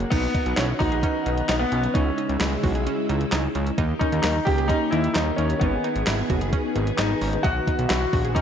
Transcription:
Already playing: string machine C#3 A#3, grand piano A#3
0.00 closed hi-hat
0.10 analog synth bass B1, string machine D#3 B3 F#4, grand piano B3, synth arpeggio sound D#4, kick, closed hi-hat, crash
0.35 synth arpeggio sound D#4, kick, closed hi-hat
0.46 analog synth bass B1, closed hi-hat
0.56 analog synth bass B1, grand piano C#4, synth arpeggio sound E4, snare, clap, closed hi-hat
0.79 analog synth bass A#1, grand piano D#4, synth arpeggio sound F#4, kick, open hi-hat
0.92 synth arpeggio sound G#4, closed hi-hat
1.03 synth arpeggio sound C#4, kick, closed hi-hat
1.26 analog synth bass B1, synth arpeggio sound D#4, closed hi-hat
1.38 closed hi-hat
1.48 analog synth bass B1, grand piano D#4, synth arpeggio sound D#4, snare, clap, closed hi-hat
1.59 grand piano B3
1.72 analog synth bass B1, synth arpeggio sound C#4, closed hi-hat
1.84 closed hi-hat
1.94 analog synth bass C#2, string machine C#3 G#3 E4, grand piano C#4, synth arpeggio sound D#4, kick, closed hi-hat
2.18 synth arpeggio sound D#4, closed hi-hat
2.29 analog synth bass C#2, closed hi-hat
2.39 analog synth bass C#2, grand piano G#3, synth arpeggio sound E4, snare, clap, closed hi-hat
2.64 analog synth bass B1, synth arpeggio sound F#4, kick, open hi-hat
2.75 synth arpeggio sound G#4, closed hi-hat
2.86 synth arpeggio sound C#4, closed hi-hat
3.09 analog synth bass C#2, synth arpeggio sound D#4, closed hi-hat
3.21 closed hi-hat
3.32 analog synth bass C#2, synth arpeggio sound D#4, snare, clap, closed hi-hat
3.55 analog synth bass C#2, synth arpeggio sound C#4, closed hi-hat
3.67 closed hi-hat
3.78 analog synth bass D#2, string machine D#3 A#3 G4, synth arpeggio sound D#4, kick, closed hi-hat
3.99 synth arpeggio sound C#4, grand piano D#4, kick, closed hi-hat
4.12 analog synth bass D#2, closed hi-hat
4.22 analog synth bass D#2, grand piano D#4, synth arpeggio sound D#4, snare, clap, closed hi-hat
4.45 analog synth bass C#2, grand piano G4, synth arpeggio sound G4, kick, open hi-hat
4.58 synth arpeggio sound G#4, closed hi-hat
4.68 synth arpeggio sound C#4, grand piano D#4, kick, closed hi-hat
4.91 analog synth bass D#2, synth arpeggio sound D#4, grand piano E4, closed hi-hat
5.04 closed hi-hat
5.14 analog synth bass D#2, grand piano D#4, synth arpeggio sound D#4, snare, clap, closed hi-hat
5.36 analog synth bass D#2, grand piano C#4, synth arpeggio sound C#4, closed hi-hat
5.50 closed hi-hat
5.59 analog synth bass G#1, grand piano B3, string machine B3 G#4, synth arpeggio sound D#4, kick, closed hi-hat
5.84 synth arpeggio sound D#4, closed hi-hat
5.96 analog synth bass G#1, closed hi-hat
6.07 analog synth bass G#1, synth arpeggio sound E4, snare, clap, closed hi-hat
6.30 analog synth bass F#1, synth arpeggio sound F#4, kick, closed hi-hat
6.41 synth arpeggio sound G#4, closed hi-hat
6.53 synth arpeggio sound C#4, kick, closed hi-hat
6.76 analog synth bass G#1, synth arpeggio sound D#4, closed hi-hat
6.87 closed hi-hat
6.97 analog synth bass G#1, grand piano D#4, synth arpeggio sound D#4, snare, clap, closed hi-hat
7.21 analog synth bass G#1, synth arpeggio sound C#4, open hi-hat
7.33 closed hi-hat
7.43 analog synth bass B1, synth arpeggio sound D#4, grand piano F#4, kick, closed hi-hat
7.67 synth arpeggio sound D#4, kick, closed hi-hat
7.79 analog synth bass B1, closed hi-hat
7.89 analog synth bass B1, synth arpeggio sound E4, grand piano F#4, snare, clap, closed hi-hat
8.13 analog synth bass A#1, synth arpeggio sound F#4, kick, open hi-hat
8.25 synth arpeggio sound G#4, closed hi-hat
8.35 synth arpeggio sound C#4, grand piano D#4, kick, closed hi-hat

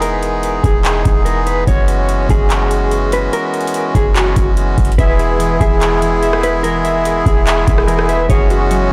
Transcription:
Already playing: 808-style bass E1, accordion E3 G#3 B3 D#4 G#4
0.01 clean electric guitar A#4, closed hi-hat
0.23 closed hi-hat
0.43 closed hi-hat
0.63 808-style bass E1, clean electric guitar G#4, kick, closed hi-hat
0.85 clap, closed hi-hat
1.05 808-style bass E1, kick, closed hi-hat
1.25 clean electric guitar A#4, closed hi-hat
1.47 clean electric guitar B4, closed hi-hat
1.67 808-style bass F#1, accordion G#3 C#4 F#4, clean electric guitar C#5, kick, closed hi-hat
1.88 closed hi-hat
2.09 closed hi-hat
2.29 808-style bass F#1, clean electric guitar G#4, kick, closed hi-hat
2.50 clap, closed hi-hat
2.71 closed hi-hat
2.91 closed hi-hat
3.12 clean electric guitar B4, closed hi-hat
3.33 clean electric guitar A#4, closed hi-hat
3.54 closed hi-hat
3.61 closed hi-hat
3.67 closed hi-hat
3.74 closed hi-hat
3.95 808-style bass F#1, clean electric guitar G#4, kick, closed hi-hat
4.15 clean electric guitar F#4, clap, closed hi-hat
4.36 808-style bass F#1, kick, closed hi-hat
4.57 closed hi-hat
4.78 808-style bass F#1, kick, closed hi-hat
4.85 closed hi-hat
4.92 closed hi-hat
4.98 808-style bass E1, accordion E3 G#3 B3 E4 G#4, clean electric guitar B4, synth keys E5, kick, closed hi-hat
5.19 synth keys G#4, closed hi-hat
5.39 synth keys E3, closed hi-hat
5.61 808-style bass E1, clean electric guitar G#4, synth keys E5, kick, closed hi-hat
5.81 synth keys G#4, clap, closed hi-hat
6.02 synth keys E3, closed hi-hat
6.23 synth keys E5, closed hi-hat
6.33 cross-stick
6.43 clean electric guitar B4, closed hi-hat
6.63 synth keys E3, clean electric guitar A#4, closed hi-hat
6.84 synth keys E5, closed hi-hat
7.05 synth keys G#4, closed hi-hat
7.25 808-style bass E1, clean electric guitar G#4, kick, closed hi-hat
7.46 synth keys E5, clap, closed hi-hat
7.68 808-style bass E1, synth keys G#4, kick, closed hi-hat
7.78 cross-stick
7.88 synth keys E3, clean electric guitar A#4, closed hi-hat
7.99 cross-stick
8.09 clean electric guitar B4, synth keys E5, closed hi-hat
8.30 808-style bass F#1, accordion C#4 F#4, synth keys G#4, clean electric guitar C#5, kick, closed hi-hat
8.50 synth keys F#4, closed hi-hat
8.71 synth keys F#3, closed hi-hat

